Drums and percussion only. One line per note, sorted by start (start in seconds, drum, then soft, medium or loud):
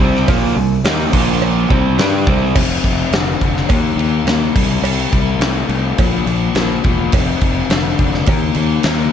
0.00 kick loud
0.15 snare soft
0.28 kick loud
0.28 open hi-hat medium
0.28 cowbell medium
0.84 snare loud
0.84 open hi-hat medium
0.84 cowbell medium
1.13 kick loud
1.13 crash loud
1.42 cowbell loud
1.70 kick loud
1.70 cowbell medium
1.98 snare loud
1.98 open hi-hat medium
1.98 cowbell medium
2.27 kick loud
2.55 kick loud
2.55 crash loud
2.55 cowbell loud
2.55 crash medium
2.84 kick medium
2.84 crash medium
3.13 snare loud
3.13 cowbell medium
3.13 crash medium
3.41 kick medium
3.41 crash medium
3.57 snare soft
3.69 kick loud
3.69 cowbell loud
3.69 crash medium
3.99 crash medium
4.27 snare medium
4.27 cowbell medium
4.27 crash medium
4.56 kick loud
4.56 crash medium
4.84 cowbell loud
4.84 crash medium
5.12 kick medium
5.12 crash medium
5.41 snare loud
5.41 cowbell medium
5.41 crash medium
5.69 crash medium
5.98 kick loud
5.98 cowbell medium
5.98 crash medium
6.27 crash medium
6.55 snare loud
6.55 cowbell medium
6.55 crash medium
6.84 kick medium
6.84 crash medium
7.12 kick loud
7.12 cowbell medium
7.12 crash medium
7.41 kick medium
7.41 crash medium
7.70 snare loud
7.70 cowbell medium
7.70 crash medium
7.99 kick medium
7.99 crash medium
8.14 snare soft
8.26 kick loud
8.26 cowbell medium
8.26 crash medium
8.54 crash medium
8.83 snare loud
8.83 cowbell medium
8.83 crash medium